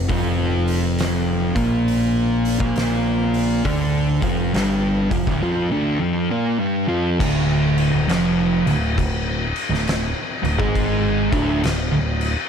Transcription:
0.08 picked electric bass F1, distorted electric guitar F2 F3, kick, open hi-hat
0.68 open hi-hat
0.99 snare, open hi-hat
1.55 picked electric bass A#1, distorted electric guitar A#2 A#3, kick, open hi-hat
1.88 open hi-hat
2.45 open hi-hat
2.59 picked electric bass A#1, distorted electric guitar A#2 A#3, kick
2.76 snare, open hi-hat
3.34 open hi-hat
3.64 picked electric bass D2, distorted electric guitar D3 D4, kick, open hi-hat
4.22 picked electric bass F1, distorted electric guitar F2 F3, kick, open hi-hat
4.54 picked electric bass G1, distorted electric guitar G2 G3, snare, open hi-hat
5.10 picked electric bass F1, distorted electric guitar F2 F3, kick, open hi-hat
5.27 picked electric bass D1, distorted electric guitar D2 D3, kick
5.42 distorted electric guitar F2 F3
5.72 distorted electric guitar D2 D3
6.00 distorted electric guitar F2 F3
6.31 distorted electric guitar A#2 A#3
6.59 distorted electric guitar G2 G3
6.87 distorted electric guitar F2 F3
7.20 picked electric bass D1, distorted electric guitar D2 D3, kick, crash
7.78 crash
7.93 picked electric bass D1, distorted electric guitar D2
8.08 picked electric bass F1, distorted electric guitar F2 F3, snare, crash
8.66 picked electric bass D1, distorted electric guitar D2, crash
8.97 picked electric bass D1, distorted electric guitar D2, kick, crash
9.56 crash
9.70 picked electric bass D1, distorted electric guitar D2, snare
9.87 snare, crash
10.43 picked electric bass D1, distorted electric guitar D2, crash
10.58 picked electric bass G#1, distorted electric guitar G#2 G#3, kick
10.76 kick, crash
11.32 picked electric bass D1, distorted electric guitar D2 D3, kick, crash
11.64 picked electric bass D1, distorted electric guitar D2, snare, crash
11.92 picked electric bass D1, distorted electric guitar D2
12.21 crash

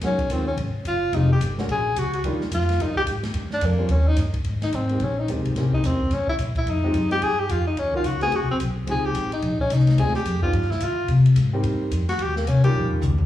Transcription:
0.01 upright bass F#2, grand piano G#3 A#3 C#4 D#4 F#4, kick, snare, ride
0.06 tenor saxophone C#4
0.18 muted upright bass stroke, kick, ride
0.29 upright bass D#2, grand piano G#3 A#3 C#4 D#4 F4, tenor saxophone C4, kick, hi-hat pedal, ride
0.47 tenor saxophone C#4
0.57 upright bass G#1, kick, ride
0.74 muted upright bass stroke
0.85 upright bass F#1, tenor saxophone F4, kick, hi-hat pedal, ride
1.13 upright bass F1, grand piano G#3 C4 D#4 F4 G4, tenor saxophone D#4, kick, ride
1.32 tenor saxophone G4
1.40 upright bass G1, kick, hi-hat pedal, ride
1.58 grand piano G#3 A#3 C#4 D4 F#4, snare
1.68 upright bass A#1, tenor saxophone G#4, kick, ride
1.96 upright bass C#2, tenor saxophone F#4, kick, hi-hat pedal, ride
2.13 tenor saxophone F#4, ride
2.24 upright bass D#2, grand piano G3 A#3 D4 D#4 F4, kick, ride
2.40 muted upright bass stroke, snare
2.51 upright bass F2, tenor saxophone F4, kick, hi-hat pedal, ride
2.61 snare
2.69 snare, ride
2.79 upright bass G2, grand piano G3 A#3 D4 D#4 F4, tenor saxophone D#4, kick, ride
2.96 tenor saxophone G4, kick
3.06 upright bass G#2, kick, hi-hat pedal, ride
3.23 snare, ride
3.34 upright bass G2, kick, ride
3.50 tenor saxophone D4, snare
3.61 upright bass F2, kick, hi-hat pedal, ride
3.66 tenor saxophone A#3
3.78 grand piano G3 A#3 C4 C#4 F4
3.89 upright bass D#2, tenor saxophone C#4, kick, ride
4.08 tenor saxophone D#4
4.16 upright bass G2, kick, snare, hi-hat pedal, ride
4.34 kick, ride
4.44 upright bass G#2, kick, ride
4.62 tenor saxophone D#4, snare, ride
4.72 upright bass G#1, tenor saxophone C4, kick, hi-hat pedal, ride
4.89 grand piano G#3 A#3 C4 D#4 G4, ride
5.00 upright bass A#1, tenor saxophone C#4, kick, ride
5.19 tenor saxophone D#4
5.28 upright bass D#2, grand piano G#3 A#3 C4 D#4 G4, kick, hi-hat pedal, ride
5.38 upright bass C2
5.45 upright bass G#1, ride
5.56 upright bass C2, grand piano A#3 C4 C#4 E4 G4, kick, snare, ride
5.73 tenor saxophone D#4, kick
5.83 upright bass E2, tenor saxophone C4, snare, hi-hat pedal, ride
6.00 kick
6.10 upright bass G2, tenor saxophone C#4, snare, ride
6.28 tenor saxophone E4, kick
6.38 upright bass A#2, kick, hi-hat pedal, ride
6.55 tenor saxophone E4, kick, ride
6.66 upright bass F2, tenor saxophone D#4, ride
6.84 grand piano G#3 C4 D#4 F4 G4
6.93 upright bass F#2, kick, hi-hat pedal, ride
7.11 grand piano G#3 C4 D#4 F4 G4, tenor saxophone G4, ride
7.21 upright bass G2, tenor saxophone G#4, kick, ride
7.39 tenor saxophone G4
7.49 upright bass F2, tenor saxophone F4, kick, hi-hat pedal, ride
7.67 tenor saxophone D#4
7.77 upright bass D#2, tenor saxophone C#4, kick, ride
7.93 grand piano A#3 C#4 D#4 F4 F#4, tenor saxophone F4, kick
8.04 upright bass C#2, tenor saxophone F#4, kick, hi-hat pedal, ride
8.21 grand piano A3 B3 C4 E4 F#4, tenor saxophone G#4, ride
8.32 upright bass D2, tenor saxophone F#4, kick, ride
8.41 upright bass C2
8.50 upright bass A1, tenor saxophone C4
8.60 upright bass B1, kick, hi-hat pedal, ride
8.87 upright bass C#2, grand piano G#3 C4 D#4 F4 G4, tenor saxophone G#4, kick, ride
9.06 tenor saxophone G4
9.15 upright bass A1, kick, hi-hat pedal, ride
9.32 tenor saxophone D#4, ride
9.42 upright bass A#1, kick, ride
9.59 tenor saxophone C#4, kick
9.70 upright bass C2, tenor saxophone D#4, kick, hi-hat pedal, ride
9.79 snare
9.87 snare, ride
9.98 upright bass D2, grand piano G#3 C4 D4 F4 G#4, tenor saxophone G#4, kick, ride
10.14 tenor saxophone G4, snare
10.25 upright bass F2, kick, hi-hat pedal, ride
10.42 grand piano F3 B3 D4 D#4 G4, tenor saxophone F4, kick
10.53 upright bass G2, kick, ride
10.62 snare
10.71 tenor saxophone E4, snare
10.80 upright bass D3, tenor saxophone F4, kick, hi-hat pedal, ride
11.08 upright bass C3, kick, ride
11.26 ride
11.35 upright bass G#2, kick, hi-hat pedal, ride
11.53 grand piano G3 A#3 C4 D#4 G4
11.63 upright bass G2, kick, ride
11.91 upright bass F2, kick, hi-hat pedal, ride
12.09 tenor saxophone F#4, snare, ride
12.19 upright bass D#2, tenor saxophone G4, kick, ride
12.36 tenor saxophone A#3, snare
12.46 upright bass C2, tenor saxophone C#4, kick, hi-hat pedal, ride
12.64 grand piano G3 A#3 C#4 D#4 F4, tenor saxophone G4, ride
12.73 upright bass A#1, floor tom
12.90 muted upright bass stroke, floor tom
13.01 upright bass C#2, floor tom, hi-hat pedal
13.18 floor tom

